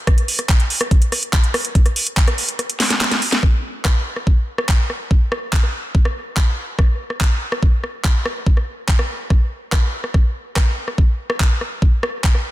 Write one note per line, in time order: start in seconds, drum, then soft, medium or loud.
0.07 kick loud
0.07 cross-stick medium
0.07 closed hi-hat medium
0.18 closed hi-hat medium
0.28 open hi-hat loud
0.39 cross-stick soft
0.39 closed hi-hat medium
0.49 kick loud
0.49 clap loud
0.49 closed hi-hat medium
0.60 closed hi-hat medium
0.70 open hi-hat medium
0.81 cross-stick medium
0.81 closed hi-hat medium
0.91 kick loud
0.91 closed hi-hat medium
1.02 closed hi-hat medium
1.12 cross-stick soft
1.12 open hi-hat loud
1.23 closed hi-hat medium
1.33 kick loud
1.33 clap loud
1.33 closed hi-hat medium
1.44 closed hi-hat medium
1.54 cross-stick medium
1.54 open hi-hat medium
1.65 closed hi-hat medium
1.75 kick loud
1.75 closed hi-hat medium
1.86 cross-stick soft
1.86 closed hi-hat medium
1.96 open hi-hat loud
2.07 closed hi-hat medium
2.17 kick loud
2.17 clap loud
2.17 closed hi-hat medium
2.28 cross-stick medium
2.28 closed hi-hat medium
2.38 open hi-hat medium
2.49 closed hi-hat medium
2.59 cross-stick soft
2.59 closed hi-hat medium
2.70 closed hi-hat medium
2.80 snare medium
2.80 open hi-hat loud
2.90 snare medium
2.90 closed hi-hat medium
3.01 snare medium
3.01 clap loud
3.01 closed hi-hat medium
3.11 snare medium
3.11 closed hi-hat medium
3.22 open hi-hat medium
3.32 snare medium
3.32 closed hi-hat medium
3.43 kick loud
3.43 cross-stick soft
3.85 kick loud
3.85 cross-stick medium
3.85 clap loud
4.16 cross-stick soft
4.27 kick loud
4.58 cross-stick medium
4.69 kick loud
4.69 clap loud
4.90 cross-stick soft
5.11 kick loud
5.32 cross-stick medium
5.53 kick loud
5.53 clap loud
5.63 cross-stick soft
5.95 kick loud
6.05 cross-stick medium
6.37 kick loud
6.37 cross-stick soft
6.37 clap loud
6.79 kick loud
6.79 cross-stick medium
7.10 cross-stick soft
7.21 kick loud
7.21 clap loud
7.52 cross-stick medium
7.63 kick loud
7.84 cross-stick soft
8.05 kick loud
8.05 clap loud
8.26 cross-stick medium
8.46 kick loud
8.57 cross-stick soft
8.88 kick loud
8.88 clap loud
8.99 cross-stick medium
9.30 kick loud
9.30 cross-stick soft
9.72 kick loud
9.72 cross-stick medium
9.72 clap loud
10.04 cross-stick soft
10.14 kick loud
10.14 cross-stick soft
10.56 kick loud
10.56 cross-stick medium
10.56 clap loud
10.88 cross-stick soft
10.98 kick loud
11.30 cross-stick medium
11.40 kick loud
11.40 clap loud
11.61 cross-stick soft
11.82 kick loud
12.03 cross-stick medium
12.24 kick loud
12.24 clap loud
12.35 cross-stick soft